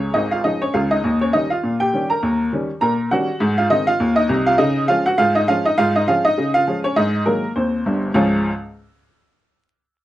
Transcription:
0.00 0.13 C#4 medium
0.00 0.13 C#5 medium
0.14 0.38 G#1 medium
0.14 0.38 G#2 medium
0.14 0.31 D#4 medium
0.14 0.31 D#5 medium
0.32 0.44 F4 medium
0.32 0.45 F5 medium
0.44 0.61 F3 medium
0.44 0.61 G#3 soft
0.44 0.61 C#4 soft
0.44 0.60 D#4 medium
0.44 0.61 D#5 medium
0.62 0.74 C#4 medium
0.62 0.74 C#5 medium
0.74 0.98 C#2 medium
0.74 0.98 C#3 medium
0.74 0.90 F4 medium
0.74 0.91 F5 medium
0.91 1.19 D#4 medium
0.91 1.15 D#5 loud
1.04 1.29 D#2 medium
1.21 1.33 C#4 medium
1.21 1.34 C#5 medium
1.33 1.50 D#3 medium
1.33 1.50 G3 soft
1.33 1.50 C#4 medium
1.33 1.49 D#4 medium
1.33 1.50 D#5 loud
1.50 1.78 F4 medium
1.50 1.74 F5 medium
1.63 1.88 A#2 medium
1.80 2.08 G4 medium
1.80 2.08 G5 loud
1.93 2.09 D#3 medium
1.93 2.10 G3 medium
1.93 2.10 C#4 medium
2.10 2.50 A#4 medium
2.10 2.44 A#5 loud
2.22 2.48 D#2 medium
2.52 2.68 D#3 medium
2.52 2.68 G3 medium
2.52 2.69 C#4 medium
2.81 3.07 A#2 medium
2.81 3.09 A#4 medium
2.81 3.09 A#5 loud
3.11 3.28 D#3 medium
3.11 3.28 G3 medium
3.11 3.28 C#4 medium
3.11 3.55 F#4 medium
3.11 3.55 F#5 loud
3.40 3.66 G#2 loud
3.58 3.70 F4 medium
3.58 3.71 F5 loud
3.70 3.87 D#3 medium
3.70 3.87 G#3 medium
3.70 3.87 C4 medium
3.70 3.87 D#4 medium
3.70 3.87 D#5 loud
3.87 4.15 F4 medium
3.87 4.15 F5 loud
4.00 4.25 D#2 medium
4.16 4.45 D#4 medium
4.16 4.40 D#5 loud
4.29 4.53 C2 medium
4.29 4.53 C3 loud
4.47 4.59 F4 medium
4.47 4.59 F5 loud
4.58 4.84 C#3 loud
4.58 4.87 D#4 medium
4.58 4.82 D#5 loud
4.88 5.05 F3 medium
4.88 5.05 G#3 medium
4.88 5.05 C#4 medium
4.88 5.05 F4 medium
4.88 5.05 F5 loud
5.06 5.18 F#4 medium
5.06 5.19 F#5 loud
5.18 5.44 G#2 medium
5.18 5.34 F4 medium
5.18 5.35 F5 loud
5.35 5.48 D#4 medium
5.35 5.48 D#5 loud
5.48 5.65 F3 medium
5.48 5.65 G#3 medium
5.48 5.65 C#4 medium
5.48 5.64 F4 medium
5.48 5.65 F5 loud
5.65 5.78 D#4 medium
5.65 5.78 D#5 loud
5.78 6.03 G#2 loud
5.78 5.94 F4 loud
5.78 5.95 F5 loud
5.96 6.08 D#4 medium
5.96 6.08 D#5 loud
6.08 6.24 F3 medium
6.08 6.24 G#3 medium
6.08 6.24 C#4 medium
6.08 6.24 F4 medium
6.08 6.24 F5 loud
6.24 6.53 D#4 medium
6.24 6.48 D#5 loud
6.37 6.63 C#3 medium
6.54 6.82 F4 medium
6.54 6.78 F5 loud
6.67 6.83 F3 medium
6.67 6.83 G#3 medium
6.67 6.84 C#4 medium
6.84 6.97 C#4 medium
6.84 6.97 C#5 loud
6.96 7.22 G#2 loud
6.96 7.25 D#4 medium
6.96 7.25 D#5 loud
7.26 7.42 D#3 medium
7.26 7.43 F#3 medium
7.26 7.43 G#3 medium
7.26 7.54 A#3 medium
7.26 7.50 A#4 medium
7.56 7.82 D#2 medium
7.56 8.12 C4 medium
7.56 8.04 C5 medium
7.86 8.10 G1 medium
7.86 8.10 G2 medium
8.14 8.49 C#2 loud
8.14 8.49 G#2 medium
8.14 8.49 F3 medium
8.14 8.49 G#3 medium
8.14 8.50 C#4 medium
8.14 8.50 F4 medium
8.14 8.50 C#5 medium

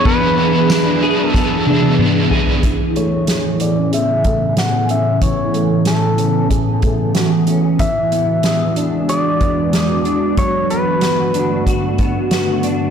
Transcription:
0.00 2.60 E2 medium
0.00 2.59 E3 medium
0.00 2.60 F#3 medium
0.00 0.69 D4 medium
0.00 2.60 D4 medium
0.00 1.02 G#4 medium
0.00 2.60 G#4 medium
0.04 0.37 E2 medium
0.04 0.38 B2 medium
0.04 0.38 E3 medium
0.04 0.38 G#3 medium
0.04 0.37 B3 medium
0.04 0.37 D4 medium
0.04 0.35 E4 medium
0.04 1.30 B4 medium
0.04 kick loud
0.04 ride medium
0.36 0.69 G#3 soft
0.36 1.34 B3 medium
0.36 0.70 D4 soft
0.36 0.69 E4 soft
0.36 ride soft
0.42 0.67 E3 soft
0.68 1.01 E3 medium
0.68 1.03 G#3 medium
0.68 1.66 D4 medium
0.68 snare loud
0.68 ride medium
0.68 tambourine medium
0.73 1.02 D4 medium
0.73 0.99 E4 medium
1.00 1.35 G#3 medium
1.00 1.35 D4 medium
1.00 1.34 E4 medium
1.00 2.31 G#4 medium
1.00 ride medium
1.06 1.34 E3 medium
1.30 1.66 E2 medium
1.30 1.67 B2 medium
1.30 1.95 A4 medium
1.34 1.67 E3 medium
1.34 1.67 G#3 medium
1.34 1.98 B3 medium
1.34 1.67 D4 loud
1.34 1.64 E4 loud
1.34 kick medium
1.34 snare medium
1.65 2.70 D4 medium
1.65 2.00 D4 medium
1.65 1.98 E4 medium
1.65 high tom medium
1.70 1.96 E3 soft
1.70 1.98 G#3 medium
1.83 high tom medium
1.97 2.30 E3 medium
1.97 2.31 G#3 medium
1.97 2.70 B3 medium
1.97 mid tom medium
2.01 2.30 D4 medium
2.01 2.28 E4 medium
2.29 2.64 G#3 soft
2.29 2.64 D4 medium
2.29 2.63 E4 medium
2.29 2.99 G#4 medium
2.29 floor tom loud
2.35 2.65 E3 medium
2.47 floor tom medium
2.63 7.75 A2 medium
2.63 7.76 C#3 medium
2.63 10.34 E3 medium
2.63 5.21 E3 medium
2.63 7.75 B3 medium
2.63 7.76 G#5 medium
2.63 kick medium
2.63 closed hi-hat medium
2.96 4.24 A3 soft
2.96 3.63 C#5 medium
2.96 closed hi-hat soft
3.27 3.92 G#4 medium
3.27 snare medium
3.27 closed hi-hat medium
3.60 3.76 B3 soft
3.60 3.94 D5 medium
3.60 closed hi-hat soft
3.76 4.88 C#4 soft
3.93 4.57 G#4 medium
3.93 4.54 E5 medium
3.93 closed hi-hat medium
4.24 5.53 A3 soft
4.24 kick medium
4.24 closed hi-hat soft
4.57 6.50 G#4 medium
4.57 4.90 F#5 medium
4.57 snare medium
4.57 closed hi-hat medium
4.89 6.17 C#4 soft
4.89 5.23 E5 medium
4.89 closed hi-hat soft
5.22 7.79 E3 medium
5.22 5.89 C#5 medium
5.22 kick medium
5.22 closed hi-hat medium
5.54 6.81 A3 soft
5.54 closed hi-hat soft
5.85 6.47 A4 medium
5.85 snare medium
5.85 closed hi-hat medium
6.18 7.46 C#4 soft
6.18 closed hi-hat soft
6.51 7.14 G#4 medium
6.51 kick medium
6.51 closed hi-hat medium
6.82 7.86 A3 soft
6.82 kick medium
6.82 closed hi-hat soft
7.15 7.31 F#4 medium
7.15 snare medium
7.15 closed hi-hat medium
7.31 7.86 G#4 soft
7.47 7.86 C#4 soft
7.47 closed hi-hat soft
7.79 10.35 E2 medium
7.79 10.37 E3 medium
7.79 10.35 G#3 medium
7.79 10.35 D4 medium
7.79 12.90 F#4 medium
7.79 9.09 E5 medium
7.79 kick medium
7.79 closed hi-hat medium
8.12 9.40 B3 soft
8.12 closed hi-hat soft
8.43 9.07 G#4 medium
8.43 snare medium
8.43 closed hi-hat medium
8.76 10.05 D4 soft
8.76 closed hi-hat medium
9.09 9.72 G#4 medium
9.09 10.38 D5 medium
9.09 closed hi-hat medium
9.41 10.70 B3 soft
9.41 kick medium
9.41 closed hi-hat soft
9.73 10.44 G#4 medium
9.73 snare medium
9.73 closed hi-hat medium
10.05 11.34 D4 soft
10.05 closed hi-hat soft
10.37 12.90 G2 medium
10.37 12.90 D3 medium
10.37 12.90 F#3 medium
10.37 12.90 A3 medium
10.37 12.90 B3 medium
10.37 10.71 C#5 medium
10.37 kick medium
10.37 closed hi-hat medium
10.70 11.98 B3 soft
10.70 11.63 B4 medium
10.70 closed hi-hat soft
11.01 11.66 F#4 medium
11.01 snare medium
11.01 closed hi-hat medium
11.34 12.62 D4 medium
11.34 closed hi-hat medium
11.67 12.30 F#4 medium
11.67 kick medium
11.67 closed hi-hat medium
11.98 12.90 B3 soft
11.98 kick medium
11.98 closed hi-hat soft
12.31 12.90 F#4 medium
12.31 snare medium
12.31 closed hi-hat medium
12.63 12.90 D4 soft
12.63 closed hi-hat soft

